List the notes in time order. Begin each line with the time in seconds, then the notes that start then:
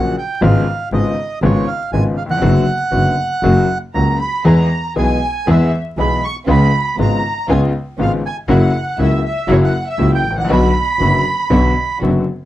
Already playing: A#1 A#2 C#3 F#3 A#3 F#4 F#5
0.18 G5
0.41 G#1 G#2 C#3 G#3 B3 F4 F5
0.92 G#1 G#2 C#3 G#3 B3 F4 D#5
1.42 G#1 G#2 C#3 G#3 B3 F4 C#5
1.68 F5
1.92 G#1 G#2 C#3 G#3 B3 F4 G#5
2.17 F5
2.26 D#2
2.30 E2 F#5
2.37 F2
2.42 F#1 F#2 D3 F#3 B3 F#4
2.92 F#1 F#2 D3 F#3 B3 F#4
3.43 F#1 F#2 C#3 F#3 A#3 F#4
3.94 C#2 C#3 F#3 A#3 F#4 A#5
4.20 B5
4.44 E2 E3 G#3 B3 E4 G#4 A#5
4.96 B1 B2 E3 G#3 B3 E4 G#4 G#5
5.46 E2 E3 G#3 B3 E4 G#4 E5
5.50 E5
5.97 B1 B2 E3 G#3 B3 E4 G#4 B5
6.24 C#6
6.46 C#2 C#3 G#3 B3 C#4 F4 B5
6.96 G#1 G#2 C#3 G#3 B3 C#4 F4
7.00 A#5
7.47 C#2 C#3 G#3 B3 C#4 F4 G#5
7.97 G#1 G#2 C#3 G#3 B3 C#4 F4 F5
8.02 F5
8.26 G#5
8.48 F#1 F#2 C#3 F#3 A#3 E4 F#4 F#5
8.98 C#2 C#3 F#3 A#3 E4 F#4 E5
9.24 E5
9.47 F#1 F#2 C#3 F#3 A#3 E4 F#4 C#5
9.52 C#5
9.62 F#5
9.87 E5
9.98 C#2 C#3 F#3 A#3 E4 F#4
10.12 G5
10.24 A1
10.30 G#1
10.37 A1 F#5
10.44 A#1 B1
10.48 B1 B2 D3 F#3 B3 D4 F#4 B5
10.52 B5
10.99 F#1 F#2 D3 F#3 B3 D4 F#4
11.50 B1 B2 D3 F#3 B3 D4 F#4
12.00 F#1 F#2 D3 F#3 B3 D4 F#4